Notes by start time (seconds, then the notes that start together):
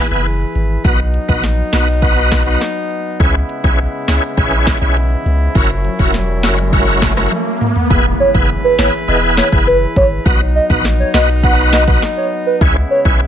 Already playing: E3 E4 G#4 B4
0.11 F#1 B3 E4 G#4 B4
0.26 closed hi-hat
0.55 G#1, closed hi-hat
0.84 B1 F#3 B3 D#4 F#4 B4, kick, closed hi-hat
1.14 closed hi-hat
1.28 A#1 B3 D#4 F#4 B4, kick
1.43 snare, closed hi-hat
1.73 B1 B3 D#4 F#4 B4, snare, closed hi-hat
2.02 B3 D#4 F#4 B4, kick, closed hi-hat
2.32 kick, snare, closed hi-hat
2.46 B3 D#4 F#4 B4
2.61 snare, closed hi-hat
2.91 closed hi-hat
3.20 C#2 C#3 G#3 C#4 E4 G#4 B4, kick, closed hi-hat, riser
3.49 closed hi-hat
3.64 B1 C#4 E4 G#4 B4, kick
3.78 closed hi-hat
4.08 C#2 C#4 E4 G#4 B4, snare, closed hi-hat
4.37 A#1 C#4 E4 G#4 B4, kick, closed hi-hat
4.67 kick, snare, closed hi-hat
4.81 B1 C#4 E4 G#4 B4
4.96 closed hi-hat
5.26 C#2, closed hi-hat
5.55 F#1 F#3 C#4 E4 F#4 A#4, kick, closed hi-hat
5.84 closed hi-hat
5.99 E1 C#4 E4 F#4 A#4, kick
6.14 snare, closed hi-hat
6.43 F#1 C#4 E4 F#4 A#4, snare, closed hi-hat
6.73 C#4 E4 F#4 A#4, kick, closed hi-hat
7.02 kick, snare, closed hi-hat
7.17 C#4 E4 F#4 A#4, cross-stick
7.32 closed hi-hat, high tom
7.61 closed hi-hat, mid tom
7.76 floor tom
7.90 E1 E3 B3 E4 G#4 B4, kick, closed hi-hat, impact
8.20 C#5
8.34 F#1 B3 E4 G#4 B4, kick
8.49 closed hi-hat
8.64 B4
8.78 G#1 B3 E4 G#4 B4 C#5, snare
9.08 E1 B3 E4 G#4 B4 D#5, closed hi-hat
9.37 C#5, snare
9.52 F#1 B3 E4 G#4 B4, kick
9.67 B4, closed hi-hat
9.96 G#1 C#5, kick
10.25 B1 F#3 B3 D#4 F#4 B4, kick, closed hi-hat
10.55 D#5
10.70 A#1 B3 D#4 F#4 B4, kick
10.84 snare, closed hi-hat
10.99 C#5
11.14 B1 B3 D#4 F#4 B4 D#5, snare
11.43 B3 D#4 F#4 B4 F#5, kick, closed hi-hat
11.73 D#5, snare
11.87 B3 D#4 F#4 B4, kick
12.02 snare, closed hi-hat
12.17 C#5
12.46 B4
12.61 C#2 C#3 G#3 C#4 E4 G#4 B4, kick, closed hi-hat
12.91 C#5
13.05 B1 C#4 E4 G#4 B4, kick
13.20 closed hi-hat